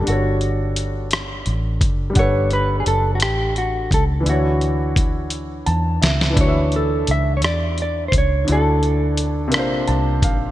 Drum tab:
HH |x-x-x-x-x-x-|x-x-x-x-x-x-|x-x-x-x-x-x-|x-x-x-x-x-x-|
SD |------r-----|------r-----|----------oo|------r-----|
BD |----------o-|o---------o-|----o-------|o---------o-|

HH |x-x-x-x-x-x-|
SD |------r-----|
BD |----------o-|